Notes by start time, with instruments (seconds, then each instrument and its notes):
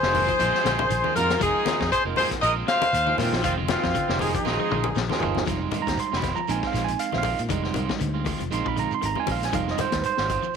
Already playing: clean electric guitar D3, trumpet G#4, horn section C5
0.03 fingered electric bass F1, tine electric piano F3 A#3 D#4 G#4, clean electric guitar G#3 C4 F4, snare
0.14 clean electric guitar D#3 G#3 C4 F4, open hi-hat, high conga, low conga, shekere
0.27 clean electric guitar F3, kick, closed hi-hat
0.39 fingered electric bass A#1, clean electric guitar D#3 G#3 C4 F4, closed hi-hat, low conga, shekere
0.53 clean electric guitar F3 G#3 F4, snare
0.64 fingered electric bass A#1, clean electric guitar D3 D#3 G#3 C4 F4, snare, closed hi-hat, shekere
0.79 kick, high conga
0.89 fingered electric bass A#1, clean electric guitar D#3, closed hi-hat, shekere
1.04 clean electric guitar D#3 G#3 C4 F4, tine electric piano F3 A#3 D#4 G#4, high conga
1.15 fingered electric bass F2, clean electric guitar D#3 G#3 C4 F4, trumpet F4, horn section A#4, closed hi-hat, low conga, shekere
1.30 snare, closed hi-hat
1.40 fingered electric bass F1, clean electric guitar D#3 F3 G#3 C4 F4, horn section G#4, kick, closed hi-hat, shekere
1.44 trumpet D#4
1.54 clean electric guitar G#3 C4 F4
1.65 clean electric guitar D#3 G#3 C4 F4, tine electric piano F3 A#3 D#4 G#4, muted fingered electric bass stroke, snare, closed hi-hat, high conga, shekere
1.81 fingered electric bass F2, kick, snare
1.92 trumpet G#4, horn section C5, muted fingered electric bass stroke, kick, closed hi-hat, shekere
2.05 fingered electric bass F1, tine electric piano F3 A#3 D#4 A#4, clean electric guitar G#3 C4 F4
2.16 clean electric guitar D#3 G#3 C4 F4, trumpet G#4, horn section C5, open hi-hat, high conga, low conga, shekere
2.30 muted clean electric guitar stroke, muted fingered electric bass stroke, kick, snare, closed hi-hat
2.42 fingered electric bass A#1, clean electric guitar D#3 G#3 C4 F4, trumpet A#4, horn section D#5, closed hi-hat, shekere
2.56 clean electric guitar G#3 C4 F4
2.67 clean electric guitar D#3 G#3 C4 F4, trumpet C5, horn section F5, muted clean electric guitar stroke, snare, closed hi-hat, shekere
2.82 snare, closed hi-hat, high conga
2.93 fingered electric bass D#2, closed hi-hat, shekere
3.07 clean electric guitar D#3 G#3 C4 F4, tine electric piano F3 A#3 D#4 G#4, high conga
3.18 fingered electric bass A#2, clean electric guitar D#3 G#3 C4 F4, trumpet C4, horn section F4, snare, open hi-hat, high conga, low conga, shekere
3.32 fingered electric bass A#1, snare
3.43 fingered electric bass F1, clean electric guitar D#3 G#3 C4 F4, trumpet C4, horn section F4, kick, closed hi-hat, shekere
3.57 clean electric guitar D3 G#3 C4 F4
3.68 clean electric guitar D#3 G#3 C4 F4, tine electric piano F3 A#3 D#4 G#4, trumpet C4, horn section F4, snare, closed hi-hat, high conga
3.83 fingered electric bass F2, clean electric guitar D#3, kick, snare
3.94 clean electric guitar D3, kick, closed hi-hat, shekere
4.08 fingered electric bass F1, tine electric piano F3 A#3 D#4 G4, clean electric guitar G#3 C4 F4, snare
4.19 clean electric guitar D#3 G#3 C4 F4, trumpet D#4, horn section G#4, open hi-hat, high conga, low conga, shekere
4.34 clean electric guitar F3, trumpet D#4, horn section G#4, kick, closed hi-hat
4.45 fingered electric bass A#1, clean electric guitar D#3 G#3 C4 F4, snare, high conga, shekere
4.59 clean electric guitar F3 G#3 C4 F4
4.71 fingered electric bass A#1, clean electric guitar D3 D#3 G#3 C4 F4, mid tom, shekere
4.84 high conga
4.96 fingered electric bass A#1, clean electric guitar D#3, snare, shekere
5.09 clean electric guitar D#3 G#3 C4 F4, tine electric piano F3 A#3 D#4 G#4, snare, high conga
5.20 fingered electric bass G1, clean electric guitar D#3 G#3 C4 F4, floor tom, low conga, shekere
5.35 snare, high conga
5.46 fingered electric bass F1, clean electric guitar D#3 F3 G#3 C4 F4, tine electric piano G3 G#3 D#4, kick, snare, closed hi-hat, low conga, shekere
5.61 clean electric guitar G#3 C4 F4
5.71 clean electric guitar D#3 G#3 C4 F4, closed hi-hat, high conga, low conga, shekere
5.82 tine electric piano A#5, shekere
5.87 fingered electric bass D#2, kick, snare, closed hi-hat
5.97 tine electric piano C6, muted fingered electric bass stroke, closed hi-hat, shekere
6.12 fingered electric bass F1, clean electric guitar G#3 C4 F4, snare
6.17 tine electric piano B5
6.22 clean electric guitar D#3 G#3 C4 F4, kick, snare, closed hi-hat, high conga, shekere
6.36 clean electric guitar F3, tine electric piano A#5, shekere
6.48 fingered electric bass A#1, clean electric guitar D#3 G#3 C4 F4, tine electric piano G#3 C4 D#4 G#5, closed hi-hat, shekere
6.62 clean electric guitar G#3 C4 F4, kick, snare
6.67 tine electric piano F5
6.73 fingered electric bass A#1, clean electric guitar D#3 F3 G#3 C4 F4, snare, closed hi-hat, shekere
6.84 tine electric piano G#5, closed hi-hat, shekere
6.99 tine electric piano F5, closed hi-hat, shekere
7.12 fingered electric bass A#1, clean electric guitar D#3 C4 F4, tine electric piano E5, snare, high conga
7.18 tine electric piano F5
7.23 clean electric guitar D#3 G#3 C4 F4, kick, open hi-hat, high conga, shekere
7.39 fingered electric bass A#2, closed hi-hat, shekere
7.49 fingered electric bass F1, clean electric guitar D#3 G#3 C4 F4, tine electric piano G3 G#3 D#4, kick, closed hi-hat, low conga, shekere
7.64 clean electric guitar D3 G#3 C4 F4, snare
7.74 fingered electric bass C2, clean electric guitar D#3 G#3 C4 F4, closed hi-hat, high conga, low conga, shekere
7.89 clean electric guitar D#3, muted fingered electric bass stroke, kick, snare, shekere
8.00 fingered electric bass D2, clean electric guitar D3, closed hi-hat, shekere
8.14 clean electric guitar G#3 C4 F4
8.25 clean electric guitar D#3 G#3 C4 F4, kick, open hi-hat, high conga, shekere
8.39 fingered electric bass F1, clean electric guitar F3, closed hi-hat, shekere
8.51 fingered electric bass A#1, clean electric guitar D#3 G#3 C4 F4, tine electric piano G#3 C4 D#4 C6, closed hi-hat, shekere
8.65 fingered electric bass A#1, clean electric guitar F3 G#3 C4 F4, tine electric piano B5, kick
8.77 clean electric guitar D3 D#3 G#3 C4 F4, tine electric piano A#5, closed hi-hat, shekere
8.91 tine electric piano C6, shekere
9.02 fingered electric bass G#1, clean electric guitar D#3, tine electric piano A#5, closed hi-hat, high conga, shekere
9.15 clean electric guitar D#3 G#3 C4 F4, high conga
9.20 tine electric piano G#5
9.27 fingered electric bass A#1, clean electric guitar D#3 G#3 C4 F4, kick, open hi-hat, high conga, shekere
9.32 tine electric piano F5
9.42 tine electric piano G#5, snare, closed hi-hat, shekere
9.52 fingered electric bass F1, clean electric guitar D#3 F3 G#3 C4 F4, tine electric piano G3 G#3 D#4 F5, kick, closed hi-hat, low conga, shekere
9.68 clean electric guitar G#3 C4 F4, tine electric piano D#5, snare
9.78 clean electric guitar D#3 G#3 C4 F4, tine electric piano C5, closed hi-hat, high conga, low conga, shekere
9.92 fingered electric bass D#2, kick, snare, closed hi-hat, shekere
10.01 tine electric piano B4, muted fingered electric bass stroke, closed hi-hat, shekere
10.06 tine electric piano C5
10.17 fingered electric bass G#1, clean electric guitar G#3 C4 F4, snare
10.29 clean electric guitar D#3 C4 F4, muted clean electric guitar stroke, kick, closed hi-hat, high conga, shekere
10.43 clean electric guitar F3, shekere